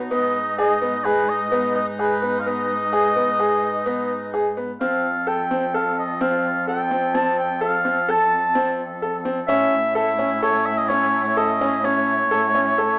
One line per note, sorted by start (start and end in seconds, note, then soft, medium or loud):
0.00 0.13 B2 medium
0.00 4.63 D#4 medium
0.10 4.82 G#2 medium
0.10 4.63 G#3 medium
0.10 0.36 B3 medium
0.10 4.63 B4 medium
0.10 0.55 D#5 loud
0.58 0.71 G#4 medium
0.58 1.06 D#5 medium
0.82 0.94 B3 medium
1.04 1.30 G#4 medium
1.04 1.31 B4 medium
1.29 1.75 D#5 loud
1.52 1.76 B3 medium
1.76 1.86 D#5 medium
1.99 2.11 G#4 medium
1.99 2.41 B4 medium
2.22 2.34 B3 medium
2.40 2.49 F5 medium
2.46 2.71 B3 medium
2.46 4.34 D#5 loud
2.93 3.05 G#4 medium
3.16 3.28 B3 medium
3.39 3.64 G#4 medium
3.86 4.11 B3 medium
4.34 4.46 G#4 medium
4.57 4.69 B3 medium
4.80 9.51 F2 medium
4.80 9.45 F3 medium
4.80 9.45 C4 medium
4.80 5.05 C4 medium
4.80 9.45 A4 medium
4.80 5.30 F5 medium
5.27 5.39 A4 medium
5.27 5.77 G5 medium
5.51 5.63 C4 medium
5.74 5.99 A4 medium
5.74 5.98 F5 medium
5.99 6.23 D#5 medium
6.21 6.45 C4 medium
6.21 6.67 F5 loud
6.67 6.80 A4 medium
6.67 7.17 G5 medium
6.91 7.03 C4 medium
7.14 7.39 C4 medium
7.14 7.38 A5 loud
7.39 7.60 G5 medium
7.61 7.73 A4 medium
7.61 8.12 F5 medium
7.85 7.97 C4 medium
8.09 8.33 A4 medium
8.09 8.80 A5 loud
8.55 8.80 C4 medium
9.02 9.14 A4 medium
9.25 9.38 C4 medium
9.47 12.99 A2 medium
9.47 12.99 A3 medium
9.47 12.99 C#4 medium
9.47 9.73 C#4 loud
9.47 12.99 E4 medium
9.47 9.92 E5 loud
9.95 10.08 A4 medium
9.95 10.40 E5 loud
10.19 10.31 C#4 medium
10.42 10.67 A4 medium
10.42 10.67 C#5 loud
10.66 10.79 E5 loud
10.77 10.91 D#5 loud
10.89 11.14 C#4 medium
10.89 11.24 C#5 loud
11.24 11.39 C#5 medium
11.37 11.49 A4 medium
11.37 11.87 D#5 loud
11.61 11.73 C#4 medium
11.84 12.09 C#4 medium
11.84 12.99 C#5 medium
12.31 12.43 A4 medium
12.55 12.67 C#4 medium
12.78 12.99 A4 medium